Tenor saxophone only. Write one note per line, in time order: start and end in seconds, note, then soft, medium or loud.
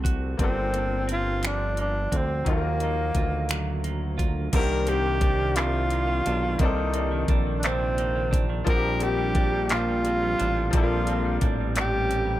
0.42 1.05 C4 loud
1.12 1.48 F4 medium
1.47 1.79 D4 medium
1.81 2.18 D4 medium
2.16 2.48 C4 medium
2.51 3.83 A#3 medium
4.56 4.90 A#4 loud
4.89 5.57 G4 loud
5.56 6.62 F4 loud
6.60 7.29 D#4 medium
7.59 7.67 D4 medium
7.65 8.42 C4 loud
8.69 9.04 A#4 loud
9.03 9.71 G4 loud
9.73 10.71 F4 loud
10.77 11.40 F4 loud
11.80 12.40 G4 loud